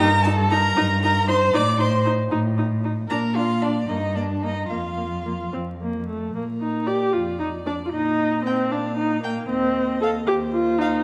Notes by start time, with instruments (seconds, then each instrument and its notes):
Already playing: violin A#5
0.00 cello G2, violin A#4
0.23 viola D#4, violin A4 A5
0.50 viola D#4, violin A#4 A#5
0.76 cello G2, viola D#4
1.02 viola D#4, violin A#4 A#5
1.27 viola D#4, violin C5 C6
1.53 cello A2, viola D#4, violin D5 D6
1.79 viola D#4, violin C5 C6
2.06 viola D#4
2.31 cello A2, viola D#4
2.58 viola D#4
2.84 viola D#4
3.09 cello A#2, viola D4, violin A#4 A#5
3.35 viola D4, violin F4 F5
3.62 violin D4 D5, viola D4
3.88 cello G2, viola A#3, violin D#4 D#5
4.15 viola A#3, violin D4 D5
4.42 viola A#3, violin D#4 D#5
4.68 cello F2, viola A#3, violin F4 F5
4.97 viola A#3
5.26 viola A#3
5.53 cello F2, viola C4
5.81 viola A#3
6.08 viola A3
6.34 cello A#2, viola A#3, violin A#4
6.61 viola D#4
6.87 viola G4, violin D5
7.13 cello F2, viola F4, violin D5
7.39 viola D#4
7.66 viola D4, violin D5
7.86 viola F4
7.92 cello A#2, viola D#4, violin D#5
8.45 viola C4, violin G5
8.70 cello A#2, viola D4, violin F5
8.97 viola D#4
9.23 viola A#3, violin G5
9.48 cello D#2, viola C4, violin D#5
10.01 viola A4, violin F5
10.27 cello D#2, viola G4, violin C5
10.53 viola F4
10.78 viola D#4, violin F5